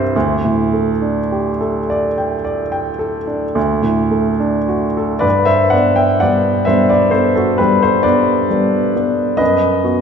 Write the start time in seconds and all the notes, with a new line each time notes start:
Already playing: C2 G2 C4 E4 G4 C5
0.16 D2
0.45 A2
0.73 A3
1.02 D4
1.32 G4
1.61 A4
1.90 D5
2.18 G5
2.45 D5
2.72 G5
2.99 A4
3.27 D4
3.55 D2
3.82 A2
4.11 A3
4.40 D4
4.68 F#4
4.97 A4
5.19 G2 B4 D5
5.45 C5 E5
5.70 B3 D4 D5 F#5
5.96 E5 G5
6.20 G3 B3 D4 D5 F#5
6.65 G3 B3 D4 C5 E5
6.89 B4 D5
7.11 B3 D4 A4 C5
7.35 F#4 A4
7.58 G3 B3 D4 G4 B4
7.83 A4 C5
8.03 B3 D4 B4 D5
8.51 G3 B3 D4
8.96 B3 D4
9.37 F#2 B4 D#5
9.83 B3 F#4